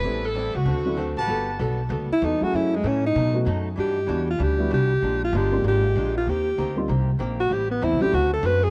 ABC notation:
X:1
M:4/4
L:1/8
Q:"Swing" 1/4=193
K:G
V:1 name="Trumpet section"
z6 z [GBfa]- | [GBfa]2 z6 | z8 | z8 |
z8 | z8 | z8 |]
V:2 name="Saxophone section"
B A2 F4 z | z8 | z8 | z8 |
z8 | z8 | z8 |]
V:3 name="Alto saxophone"
z8 | z4 z E _E F | E _A, ^C _E3 z2 | G3 =F G2 G2- |
G =F G2 G3 F | G3 z4 F | G B, E G F A B _A |]
V:4 name="Grand piano"
[G,B,CEA] z4 [F,CDEA] z2 | z6 z [F,A,^CE_A]- | [F,A,^CE_A]2 z3 [F,=A,B,^DF] z2 | z4 z [G,B,DEF] z2 |
z3 [_A,_B,CD=F]3 z2 | z3 [G,_B,C_E=F] z4 | z3 [F,A,CDE] z4 |]
V:5 name="Hollow-body jazz guitar"
[A,,G,CE] z [A,,G,CE] z [D,A,CF] z [D,A,CF] z | [G,B,FA] z [G,B,FA] z [G,B,FA] z [G,B,FA] z | [F,,E,A,^C] z [F,,E,A,C] z [B,,F,A,^D] z [B,,F,A,D] z | [E,G,DF] z [E,G,DF] z [E,G,DF] z [E,G,DF] z |
[_B,,_A,D=F] z [B,,A,DF] z [B,,A,DF] z [B,,A,DF] z | [_E,_B,CG] z [E,B,CG] z [E,B,CG] z [E,B,CG] z | [A,,G,CE] z [A,,G,CE] z [D,A,CF] z [D,A,CF] z |]
V:6 name="Upright bass" clef=bass
A,,,3 ^C,, D,,3 A,,, | G,,,2 B,,,2 D,, z E,, z | F,,2 A,,2 B,,2 F,,2 | G,,2 E,,2 D,,2 C,,2 |
_B,,,2 G,,,2 _A,,,2 B,,,2 | _E,,2 D,,2 C,,2 _B,,,2 | A,,,2 (3E,, C,, A,,, D,,2 F,,2 |]